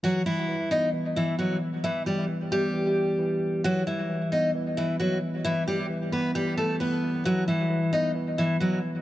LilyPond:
<<
  \new Staff \with { instrumentName = "Steel-string acoustic guitar" } { \time 4/4 \key e \minor \tempo 4 = 133 <fis fis'>8 <e e'>4 <dis' dis''>8 r8 <e e'>8 <fis fis'>8 r8 | <e e'>8 <g g'>8 r8 <g g'>2~ <g g'>8 | <fis fis'>8 <e e'>4 <dis' dis''>8 r8 <e e'>8 <fis fis'>8 r8 | <e e'>8 <g g'>8 r8 <b b'>8 <g g'>8 <a a'>8 <b b'>4 |
<fis fis'>8 <e e'>4 <dis' dis''>8 r8 <e e'>8 <fis fis'>8 r8 | }
  \new Staff \with { instrumentName = "Tine electric piano" } { \clef bass \time 4/4 \key e \minor e8 g8 e8 b8 e4 e4 | e8 g8 e8 b8 e4 e4 | e8 g8 e8 b8 e4 e4 | e8 g8 e8 b8 e4 e4 |
e8 g8 e8 b8 e4 e4 | }
>>